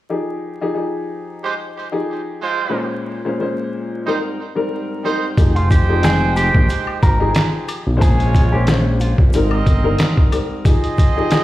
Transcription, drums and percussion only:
5.38 kick loud
5.38 closed hi-hat loud
5.38 maracas medium
5.56 closed hi-hat medium
5.70 kick loud
5.70 closed hi-hat medium
5.70 maracas soft
6.03 snare loud
6.03 clap medium
6.03 closed hi-hat medium
6.03 maracas medium
6.36 closed hi-hat medium
6.36 maracas medium
6.55 kick loud
6.69 closed hi-hat medium
6.69 maracas medium
6.87 high woodblock medium
7.03 kick medium
7.03 closed hi-hat medium
7.03 maracas medium
7.35 snare loud
7.35 clap loud
7.35 closed hi-hat loud
7.35 maracas medium
7.68 closed hi-hat medium
7.68 high woodblock medium
7.68 maracas soft
8.01 kick loud
8.01 closed hi-hat loud
8.01 maracas medium
8.20 closed hi-hat medium
8.34 kick loud
8.34 closed hi-hat medium
8.34 maracas soft
8.67 snare loud
8.67 clap medium
8.67 closed hi-hat medium
8.67 maracas medium
9.00 closed hi-hat medium
9.00 maracas medium
9.18 kick medium
9.33 closed hi-hat medium
9.33 maracas medium
9.51 high woodblock medium
9.66 kick medium
9.66 closed hi-hat medium
9.66 maracas medium
9.98 snare loud
9.98 clap loud
9.98 closed hi-hat loud
9.98 maracas medium
10.17 kick loud
10.32 closed hi-hat medium
10.32 high woodblock medium
10.32 maracas soft
10.65 kick loud
10.65 closed hi-hat loud
10.65 maracas medium
10.84 closed hi-hat medium
10.98 kick medium
10.98 closed hi-hat medium
10.98 maracas soft
11.31 snare loud
11.31 clap medium
11.31 closed hi-hat medium
11.31 maracas medium

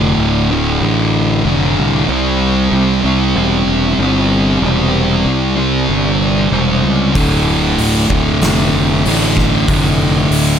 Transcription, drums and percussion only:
7.15 kick loud
7.15 open hi-hat medium
7.78 open hi-hat medium
8.10 kick medium
8.42 snare loud
8.42 open hi-hat soft
9.06 open hi-hat medium
9.37 kick medium
9.37 snare soft
9.68 kick loud
9.68 open hi-hat medium
10.32 open hi-hat medium

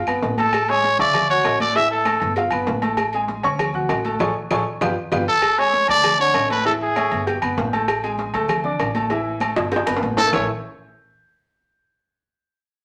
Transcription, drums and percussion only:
0.07 high conga soft
0.07 low agogo loud
0.07 claves medium
0.22 cowbell medium
0.22 high conga medium
0.22 low timbale medium
0.38 cowbell medium
0.38 high conga medium
0.38 low agogo medium
0.53 cowbell loud
0.53 high conga soft
0.53 low agogo loud
0.53 claves medium
0.68 high conga soft
0.68 low agogo medium
0.83 cowbell medium
0.83 high conga medium
0.83 low timbale medium
0.99 cowbell medium
0.99 high conga soft
0.99 low agogo medium
1.14 cowbell loud
1.14 high conga soft
1.14 low conga medium
1.14 low agogo loud
1.14 claves medium
1.30 high conga soft
1.30 low conga medium
1.44 cowbell medium
1.44 high conga soft
1.44 low timbale medium
1.44 low agogo loud
1.44 claves medium
1.60 high conga medium
1.60 low agogo medium
1.76 cowbell loud
1.76 high conga soft
1.76 low agogo medium
1.91 high conga soft
2.05 cowbell medium
2.05 high conga loud
2.05 low timbale medium
2.05 low agogo loud
2.05 claves medium
2.20 cowbell medium
2.20 low agogo medium
2.36 cowbell loud
2.36 high conga soft
2.36 low agogo medium
2.51 high conga soft
2.51 low agogo loud
2.51 claves medium
2.67 cowbell medium
2.67 high conga medium
2.67 low timbale medium
2.82 cowbell medium
2.82 high conga medium
2.82 low agogo medium
2.97 cowbell loud
2.97 high conga soft
2.97 low agogo loud
2.97 claves medium
3.13 high conga soft
3.13 low agogo medium
3.28 cowbell medium
3.28 high conga medium
3.28 low timbale medium
3.43 cowbell medium
3.43 high conga soft
3.43 low agogo medium
3.59 cowbell loud
3.59 high conga soft
3.59 low conga medium
3.59 low agogo loud
3.59 claves medium
3.74 high conga soft
3.74 low conga medium
3.89 cowbell medium
3.89 high conga soft
3.89 low timbale medium
3.89 low agogo loud
3.89 claves medium
4.05 high conga medium
4.05 low agogo medium
4.19 cowbell loud
4.19 low conga loud
4.19 high timbale loud
4.19 claves medium
4.51 cowbell loud
4.51 low conga loud
4.51 high timbale loud
4.51 claves loud
4.81 cowbell loud
4.81 low conga loud
4.81 high timbale loud
4.81 claves loud
5.12 cowbell loud
5.12 low conga loud
5.12 high timbale medium
5.12 claves loud
5.42 cowbell loud
5.42 high conga soft
5.42 low agogo loud
5.42 claves medium
5.58 high conga soft
5.58 low agogo medium
5.73 cowbell medium
5.73 high conga medium
5.73 low timbale medium
5.88 cowbell medium
5.88 low agogo medium
6.04 cowbell loud
6.04 high conga soft
6.04 low conga medium
6.04 low agogo loud
6.04 claves medium
6.20 high conga soft
6.34 cowbell medium
6.34 high conga soft
6.34 low timbale medium
6.34 low agogo loud
6.34 claves medium
6.50 high conga medium
6.50 low agogo medium
6.65 cowbell loud
6.65 low agogo medium
6.82 high conga soft
6.96 cowbell medium
6.96 high conga medium
6.96 low timbale medium
6.96 low agogo loud
6.96 claves medium
7.11 cowbell medium
7.11 low agogo medium
7.27 cowbell loud
7.27 high conga soft
7.27 low agogo medium
7.42 high conga soft
7.42 low agogo loud
7.42 claves medium
7.57 cowbell medium
7.57 high conga medium
7.57 low timbale medium
7.73 cowbell medium
7.73 high conga medium
7.73 low agogo medium
7.88 cowbell loud
7.88 high conga soft
7.88 low agogo loud
7.88 claves medium
8.03 high conga soft
8.03 low agogo medium
8.18 cowbell medium
8.18 high conga medium
8.18 low timbale medium
8.33 cowbell medium
8.33 high conga soft
8.33 low agogo medium
8.48 cowbell loud
8.48 high conga soft
8.48 low conga medium
8.48 low agogo loud
8.48 claves medium
8.64 high conga soft
8.64 low conga medium
8.79 cowbell medium
8.79 high conga soft
8.79 low timbale medium
8.79 low agogo loud
8.79 claves medium
8.95 high conga medium
8.95 low agogo medium
9.10 cowbell loud
9.10 high conga soft
9.10 low agogo medium
9.25 high conga soft
9.40 cowbell medium
9.40 high conga medium
9.40 low timbale medium
9.40 low agogo loud
9.40 claves medium
9.56 cowbell medium
9.56 high timbale loud
9.56 low agogo medium
9.71 cowbell loud
9.71 high bongo medium
9.71 high conga soft
9.71 low agogo medium
9.76 high timbale loud
9.87 high bongo medium
9.87 high conga soft
9.87 low agogo loud
9.87 claves medium
9.97 low timbale loud
10.02 cowbell medium
10.02 high conga medium
10.17 cowbell medium
10.17 low bongo loud
10.17 high conga medium
10.17 low timbale medium
10.17 low agogo medium
10.28 low timbale medium
10.33 low bongo medium
10.33 low conga loud
10.33 low timbale loud
10.33 claves loud

